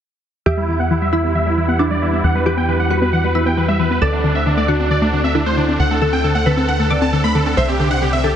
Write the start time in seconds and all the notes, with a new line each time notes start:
0.46 E2 E3 G3 B3 G4 E5 F#5
0.57 G3 E4
0.68 E3 E4
0.79 B3 F#5
0.90 E3 E4
1.02 G3 E5
1.13 E3 E4
1.24 B3 E4
1.35 E3 E5
1.46 G3 E4
1.57 E3 E4
1.68 B3 F#5
1.79 E3 D4 E4
1.91 G3 D5
2.02 E3 E4
2.13 B3 E4
2.24 E2 E3 F#5
2.35 G3 B4
2.46 E3 G4 B4
2.57 B3 G5
2.68 E3 B4
2.79 G3 F#5
2.91 E3 F#4 B4
3.02 B3 B4
3.13 E3 F#5
3.24 G3 B4
3.35 E3 E4 B4
3.46 B3 G5
3.57 E3 B4
3.68 G3 E5
3.79 E3 B4
3.91 B3 B4
4.02 D2 D3 A3 C4 A4 D5
4.13 A3 D4
4.24 D3 D4
4.35 C4 E5
4.46 D3 D4
4.57 A3 D5
4.68 D3 D4 F#4
4.79 C4 D4
4.91 D3 D5
5.02 A3 D4
5.13 D3 D4
5.24 C4 E5
5.35 D3 D4 E4
5.46 A3 C5
5.57 D3 D4
5.68 C4 D4
5.79 D2 D3 F#5
5.91 A3 A4
6.02 D3 A4
6.13 C4 G5
6.24 D3 A4
6.35 A3 F#5
6.46 D3 A4 B4
6.57 C4 A4
6.68 D3 F#5
6.79 A3 A4
6.90 D3 A4 D5
7.02 C4 A5
7.13 D3 A4
7.24 A3 B5
7.35 D3 A4
7.46 C4 A4
7.57 C2 C3 D3 D4 G4 C5 E5
7.68 C4 G4
7.79 D3 G4
7.91 D4 F#5
8.02 D3 G4
8.13 C4 E5
8.24 D3 G4 A4